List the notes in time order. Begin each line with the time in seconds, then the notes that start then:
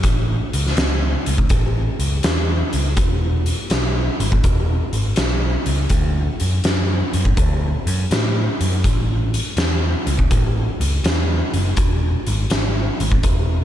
0.03 A1, kick, closed hi-hat
0.53 C#2, closed hi-hat
0.67 snare
0.77 C#2, snare, closed hi-hat
1.26 C#2, closed hi-hat
1.38 kick
1.49 A1, kick, closed hi-hat
1.99 C#2, closed hi-hat
2.23 E2, snare, closed hi-hat
2.73 C#2, closed hi-hat
2.97 E1, kick, closed hi-hat
3.46 closed hi-hat
3.70 B1, snare, closed hi-hat
4.20 G#1, closed hi-hat
4.32 kick
4.44 E1, kick, closed hi-hat
4.93 G#1, closed hi-hat
5.16 B1, snare, closed hi-hat
5.66 C#2, closed hi-hat
5.89 D2, kick, closed hi-hat
6.40 F#2, closed hi-hat
6.64 F#2, snare, closed hi-hat
7.13 F#2, closed hi-hat
7.25 kick
7.37 D2, kick, closed hi-hat
7.87 F#2, closed hi-hat
8.11 A2, snare, closed hi-hat
8.61 F#2, closed hi-hat
8.84 A1, kick, closed hi-hat
9.34 closed hi-hat
9.57 E2, snare, closed hi-hat
10.07 C#2, closed hi-hat
10.19 kick
10.31 A1, kick, closed hi-hat
10.80 C#2, closed hi-hat
11.04 E2, snare, closed hi-hat
11.54 F#1, closed hi-hat
11.77 E1, kick, closed hi-hat
12.27 G#1, closed hi-hat
12.50 G#1, snare, closed hi-hat
13.00 G#1, closed hi-hat
13.12 kick
13.23 E1, kick, closed hi-hat